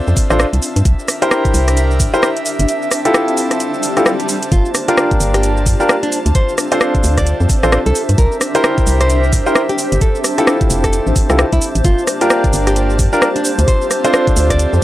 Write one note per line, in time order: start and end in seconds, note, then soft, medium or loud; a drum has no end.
0.00 0.83 C4 medium
0.00 0.27 D4 medium
0.00 14.84 D4 medium
0.00 0.27 F4 medium
0.00 0.82 F4 medium
0.00 0.27 A4 medium
0.00 0.27 C5 loud
0.00 0.83 E5 medium
0.00 4.52 E5 medium
0.00 0.81 A5 loud
0.07 0.14 F2 loud
0.07 shaker soft
0.17 kick loud
0.17 open hi-hat loud
0.17 shaker medium
0.30 0.45 A1 medium
0.30 0.44 D4 medium
0.30 0.44 F4 medium
0.30 0.44 A4 medium
0.30 0.44 C5 medium
0.30 cross-stick medium
0.30 shaker soft
0.40 cross-stick loud
0.40 shaker soft
0.53 0.60 C2 medium
0.53 closed hi-hat medium
0.53 shaker soft
0.62 open hi-hat medium
0.62 shaker medium
0.76 0.83 G2 loud
0.76 closed hi-hat medium
0.76 shaker soft
0.85 0.95 C2 loud
0.85 2.67 D4 medium
0.85 4.48 G4 medium
0.85 2.67 A#4 loud
0.85 4.48 E5 medium
0.85 kick loud
0.85 closed hi-hat medium
0.85 shaker soft
0.99 shaker soft
1.06 14.84 G4 medium
1.06 cross-stick medium
1.06 open hi-hat loud
1.06 shaker medium
1.22 2.10 E4 medium
1.22 2.10 G4 medium
1.22 2.10 A#4 medium
1.22 2.10 C5 medium
1.22 cross-stick soft
1.22 closed hi-hat medium
1.22 shaker soft
1.31 cross-stick loud
1.31 shaker soft
1.45 kick loud
1.45 closed hi-hat soft
1.45 shaker soft
1.54 2.01 C2 loud
1.54 14.84 C5 loud
1.54 open hi-hat loud
1.54 shaker medium
1.68 cross-stick medium
1.68 closed hi-hat medium
1.68 shaker soft
1.77 closed hi-hat medium
1.77 shaker soft
1.91 shaker soft
2.00 2.10 G1 loud
2.00 kick loud
2.00 open hi-hat loud
2.00 shaker medium
2.14 2.27 E4 medium
2.14 2.27 G4 medium
2.14 2.27 A#4 medium
2.14 2.27 C5 medium
2.14 shaker soft
2.23 cross-stick loud
2.23 shaker soft
2.37 closed hi-hat medium
2.37 shaker soft
2.46 open hi-hat loud
2.46 shaker medium
2.59 2.66 G1 loud
2.59 closed hi-hat medium
2.59 shaker soft
2.69 4.50 C4 medium
2.69 8.14 A5 medium
2.69 closed hi-hat medium
2.69 shaker soft
2.82 shaker soft
2.91 cross-stick medium
2.91 open hi-hat loud
2.91 shaker medium
3.05 3.94 E4 medium
3.05 3.94 F4 medium
3.05 3.94 G4 medium
3.05 3.94 A4 medium
3.05 cross-stick soft
3.05 closed hi-hat medium
3.05 shaker soft
3.14 cross-stick loud
3.14 shaker soft
3.28 closed hi-hat soft
3.28 shaker soft
3.37 open hi-hat loud
3.37 shaker medium
3.51 cross-stick medium
3.51 closed hi-hat medium
3.51 shaker soft
3.60 closed hi-hat medium
3.60 swell medium
3.60 shaker soft
3.74 shaker soft
3.83 open hi-hat loud
3.83 shaker medium
3.97 4.10 E4 medium
3.97 4.10 F4 medium
3.97 4.10 G4 medium
3.97 4.10 A4 medium
3.97 cross-stick medium
3.97 closed hi-hat soft
3.97 shaker soft
4.06 cross-stick loud
4.06 shaker soft
4.20 closed hi-hat medium
4.20 shaker soft
4.29 open hi-hat loud
4.29 shaker medium
4.43 closed hi-hat medium
4.43 shaker soft
4.52 4.61 G1 loud
4.52 6.10 A#3 medium
4.52 6.10 D4 medium
4.52 8.14 F4 medium
4.52 4.70 F4 loud
4.52 kick loud
4.52 closed hi-hat medium
4.52 shaker soft
4.65 shaker soft
4.75 cross-stick medium
4.75 open hi-hat loud
4.75 shaker medium
4.88 5.77 D4 medium
4.88 5.77 F4 medium
4.88 5.11 F4 medium
4.88 5.77 G4 medium
4.88 5.77 A#4 medium
4.88 cross-stick soft
4.88 closed hi-hat medium
4.88 shaker soft
4.97 cross-stick loud
4.97 shaker soft
5.11 kick loud
5.11 closed hi-hat soft
5.11 shaker soft
5.20 5.68 G1 loud
5.20 open hi-hat loud
5.20 shaker medium
5.34 5.56 G4 loud
5.34 cross-stick medium
5.34 closed hi-hat medium
5.34 shaker soft
5.43 closed hi-hat medium
5.43 shaker soft
5.57 shaker soft
5.66 5.76 G2 loud
5.66 kick loud
5.66 open hi-hat loud
5.66 shaker medium
5.80 5.93 D4 medium
5.80 5.93 F4 medium
5.80 5.93 G4 medium
5.80 5.93 A#4 medium
5.80 shaker soft
5.89 cross-stick loud
5.89 shaker soft
6.03 6.18 D4 loud
6.03 closed hi-hat medium
6.03 shaker soft
6.12 8.16 C4 medium
6.12 11.80 E5 medium
6.12 open hi-hat loud
6.12 shaker medium
6.26 6.32 D2 loud
6.26 closed hi-hat medium
6.26 shaker soft
6.35 6.53 C5 loud
6.35 kick loud
6.35 closed hi-hat medium
6.35 shaker soft
6.49 shaker soft
6.58 cross-stick medium
6.58 open hi-hat loud
6.58 shaker medium
6.72 7.60 D4 medium
6.72 7.60 F4 medium
6.72 7.60 A4 medium
6.72 7.60 C5 medium
6.72 6.94 C5 loud
6.72 11.85 E5 loud
6.72 cross-stick soft
6.72 closed hi-hat medium
6.72 shaker soft
6.81 cross-stick loud
6.81 shaker soft
6.95 kick loud
6.95 closed hi-hat soft
6.95 shaker soft
7.04 7.34 D2 loud
7.04 open hi-hat loud
7.04 shaker medium
7.17 7.40 D5 medium
7.17 kick medium
7.17 cross-stick medium
7.17 closed hi-hat medium
7.17 shaker soft
7.27 closed hi-hat medium
7.27 shaker soft
7.40 7.47 F2 loud
7.40 shaker soft
7.49 kick loud
7.49 open hi-hat loud
7.49 shaker medium
7.63 7.78 A1 medium
7.63 7.77 D4 medium
7.63 7.77 F4 medium
7.63 7.77 A4 medium
7.63 7.77 C5 medium
7.63 cross-stick medium
7.63 shaker soft
7.72 cross-stick loud
7.72 shaker soft
7.86 7.93 C2 medium
7.86 8.02 A4 medium
7.86 closed hi-hat medium
7.86 shaker soft
7.95 open hi-hat medium
7.95 shaker medium
8.09 8.15 G2 loud
8.09 closed hi-hat medium
8.09 shaker soft
8.18 8.28 C2 loud
8.18 9.99 D4 medium
8.18 11.81 G4 medium
8.18 9.99 A#4 loud
8.18 8.36 A#4 loud
8.18 kick loud
8.18 closed hi-hat medium
8.18 shaker soft
8.32 shaker soft
8.41 cross-stick medium
8.41 open hi-hat loud
8.41 shaker medium
8.55 9.43 E4 medium
8.55 9.43 G4 medium
8.55 9.43 A#4 medium
8.55 8.77 A#4 medium
8.55 9.43 C5 loud
8.55 cross-stick soft
8.55 closed hi-hat medium
8.55 shaker soft
8.64 cross-stick loud
8.64 shaker soft
8.78 kick loud
8.78 closed hi-hat soft
8.78 shaker soft
8.87 9.34 C2 loud
8.87 open hi-hat medium
8.87 shaker medium
9.01 9.23 C5 medium
9.01 cross-stick medium
9.01 closed hi-hat medium
9.01 shaker soft
9.10 closed hi-hat medium
9.10 shaker soft
9.24 shaker soft
9.33 9.42 G1 loud
9.33 kick loud
9.33 open hi-hat loud
9.33 shaker medium
9.46 9.60 E4 medium
9.46 9.60 G4 medium
9.46 9.60 A#4 medium
9.46 9.60 C5 medium
9.46 shaker soft
9.55 cross-stick loud
9.55 shaker soft
9.69 9.85 G4 loud
9.69 closed hi-hat soft
9.69 shaker soft
9.78 open hi-hat medium
9.78 shaker medium
9.92 9.99 G1 loud
9.92 closed hi-hat medium
9.92 shaker soft
10.01 11.83 C4 medium
10.01 10.19 A4 loud
10.01 14.84 A5 loud
10.01 kick loud
10.01 closed hi-hat medium
10.01 shaker soft
10.15 shaker soft
10.24 cross-stick medium
10.24 open hi-hat loud
10.24 shaker medium
10.38 11.26 E4 medium
10.38 11.26 F4 medium
10.38 11.26 G4 medium
10.38 11.26 A4 medium
10.38 10.60 A4 medium
10.38 cross-stick soft
10.38 closed hi-hat medium
10.38 shaker soft
10.47 cross-stick loud
10.47 shaker soft
10.61 kick loud
10.61 closed hi-hat soft
10.61 shaker soft
10.70 11.00 F1 loud
10.70 open hi-hat medium
10.70 shaker medium
10.84 11.06 A4 loud
10.84 kick medium
10.84 cross-stick medium
10.84 closed hi-hat medium
10.84 shaker soft
10.93 closed hi-hat medium
10.93 shaker soft
11.07 11.13 A1 loud
11.07 shaker soft
11.16 kick loud
11.16 open hi-hat loud
11.16 shaker medium
11.30 11.44 C2 loud
11.30 11.43 E4 medium
11.30 11.43 F4 medium
11.30 11.43 G4 medium
11.30 11.43 A4 medium
11.30 cross-stick medium
11.30 shaker soft
11.39 cross-stick loud
11.39 shaker soft
11.53 11.59 C2 loud
11.53 11.68 E4 loud
11.53 kick medium
11.53 closed hi-hat medium
11.53 shaker soft
11.62 open hi-hat medium
11.62 shaker medium
11.75 11.82 A1 loud
11.75 closed hi-hat medium
11.75 shaker soft
11.84 11.94 G1 loud
11.84 13.43 A#3 medium
11.84 13.43 D4 medium
11.84 13.43 F4 medium
11.84 12.03 F4 loud
11.84 kick loud
11.84 closed hi-hat medium
11.84 shaker soft
11.98 shaker soft
12.07 cross-stick medium
12.07 open hi-hat loud
12.07 shaker medium
12.21 13.10 D4 medium
12.21 13.10 F4 medium
12.21 12.44 F4 medium
12.21 13.10 G4 medium
12.21 13.10 A#4 medium
12.21 cross-stick soft
12.21 closed hi-hat medium
12.21 shaker soft
12.30 cross-stick loud
12.30 shaker soft
12.44 kick loud
12.44 closed hi-hat soft
12.44 shaker soft
12.53 13.01 G1 loud
12.53 open hi-hat medium
12.53 shaker medium
12.67 12.89 G4 medium
12.67 cross-stick medium
12.67 closed hi-hat medium
12.67 shaker soft
12.76 closed hi-hat medium
12.76 shaker soft
12.90 shaker soft
12.99 13.09 G2 loud
12.99 kick loud
12.99 open hi-hat loud
12.99 shaker medium
13.13 13.26 D4 medium
13.13 13.26 F4 medium
13.13 13.26 G4 medium
13.13 13.26 A#4 loud
13.13 shaker soft
13.22 cross-stick loud
13.22 shaker soft
13.36 13.51 D4 medium
13.36 closed hi-hat medium
13.36 shaker soft
13.45 14.84 C4 medium
13.45 14.84 F4 medium
13.45 14.84 E5 medium
13.45 open hi-hat medium
13.45 shaker medium
13.59 13.65 D2 loud
13.59 closed hi-hat medium
13.59 shaker soft
13.68 13.86 C5 loud
13.68 kick loud
13.68 closed hi-hat medium
13.68 shaker soft
13.82 shaker soft
13.91 cross-stick medium
13.91 open hi-hat loud
13.91 shaker medium
14.04 14.84 D4 medium
14.04 14.84 F4 medium
14.04 14.84 A4 medium
14.04 14.27 C5 medium
14.04 14.84 C5 loud
14.04 cross-stick soft
14.04 closed hi-hat medium
14.04 shaker soft
14.14 cross-stick loud
14.14 shaker soft
14.27 kick loud
14.27 closed hi-hat soft
14.27 shaker soft
14.37 14.67 D2 loud
14.37 14.84 E5 medium
14.37 open hi-hat loud
14.37 shaker medium
14.50 14.72 D5 loud
14.50 kick medium
14.50 cross-stick medium
14.50 closed hi-hat medium
14.50 shaker soft
14.59 closed hi-hat medium
14.59 shaker soft
14.73 14.80 F2 loud
14.73 shaker soft